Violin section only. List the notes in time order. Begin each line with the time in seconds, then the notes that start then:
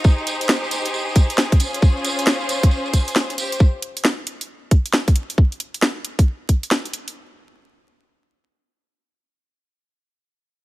Already playing: D#4
0.05 G4 G#4 C5
1.60 C#4 F4 C5
3.38 G4 C5